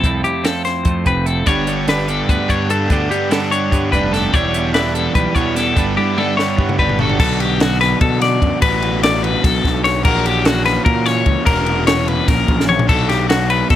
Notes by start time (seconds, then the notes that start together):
Already playing: A4
0.04 C2 F2 A3 C4 E4, kick, closed hi-hat
0.24 E4 G4, closed hi-hat
0.44 F3 C4 A4, snare, closed hi-hat
0.65 C5, snare, closed hi-hat
0.85 F2 A3, kick, closed hi-hat
1.05 F1 C3 C4 B4, kick, closed hi-hat
1.26 E4 A4, closed hi-hat
1.46 G1 G2 G3 B3 D4 G4 C#5, kick, closed hi-hat
1.66 B3 D4 G4 A4, closed hi-hat
1.88 D3 G3 B3 D4 G4 B4, snare, closed hi-hat
1.98 D4
2.08 B3 D4 G4 A4, closed hi-hat
2.29 D2 B3 B4, kick, closed hi-hat
2.48 G2 B3 D4 G4 C#5, kick, closed hi-hat
2.69 G3 B3 D4 G4 A4, closed hi-hat
2.90 D2 G2 G3 B3 D4 G4, kick, closed hi-hat
3.09 B3 D4 G4 A4, closed hi-hat
3.31 D3 G3 B3 D4 G4 A4, snare, closed hi-hat
3.41 D4
3.51 B3 D4 G4 C#5, closed hi-hat
3.72 G2 B3, kick, closed hi-hat
3.91 F1 G2 B3 D4 G4 B4, kick, closed hi-hat
4.11 G3 B3 D4 G4 A4, snare, closed hi-hat
4.32 E1 E2 E3 G3 B3 D4 E4 G4 C#5, kick, closed hi-hat
4.54 B3 E4 G4, closed hi-hat
4.74 E3 B3 D4 E4 G4 B4, snare, closed hi-hat
4.94 B3 E4 G4 A4, closed hi-hat
5.15 B1 G3 B4, kick, closed hi-hat
5.35 E2 B2 B3 D4 E4 G4 C#5, kick, closed hi-hat
5.56 E3 B3 E4 G4 A4, snare, closed hi-hat
5.75 G1 G2 G3 B3 D4 E4 G4, kick, closed hi-hat
5.97 B3 D4 E4 G4, high tom
6.17 D3 G3 B3 D4 G4 A4, high tom
6.28 D4
6.37 B3 D4 G4 C#5, snare
6.58 G2 B3, kick
6.69 mid tom
6.78 G1 G2 B3 D4 G4 B4, kick
6.89 floor tom
6.98 G3 B3 D4 F#4 G4 A4, floor tom
7.10 floor tom
7.19 B1 B2 F#3 B3 D4 F#4 A4, kick, crash
7.40 G4, ride
7.60 F#4, snare, ride
7.81 B4, snare, ride
8.01 B2 A4, kick, ride
8.21 D5, snare, ride
8.42 F#2, kick, ride
8.62 A1 B2 F#3 B3 D4 F#4 B4, kick, ride
8.82 ride
9.03 D5, snare, ride
9.23 B4, ride
9.44 B1 A4, kick, snare, ride
9.65 B1, kick, snare, ride
9.84 C#5, snare, ride
10.03 A#1 A#2 E3 A#3 C#4 F#4 A#4, kick, crash
10.26 G4, ride
10.45 F#4, snare, ride
10.65 B4, snare, ride
10.85 A#2 A#4, kick, ride
11.06 C#5, snare, ride
11.26 C#2, kick, ride
11.45 E1 A#2 E3 A#3 C#4 F#4 A#4, kick, ride
11.66 ride
11.87 C#5, snare, ride
12.08 B4, ride
12.28 A#1 A#4, kick, snare, ride
12.48 A#1, kick, ride
12.60 snare
12.69 C#5, mid tom
12.79 floor tom
12.87 B1 B2 F#3 B3 D4 F#4 A4, kick, crash
13.09 G4, snare, ride
13.29 F#4, snare, ride
13.50 B4, ride
13.70 B2 A4, kick, snare, ride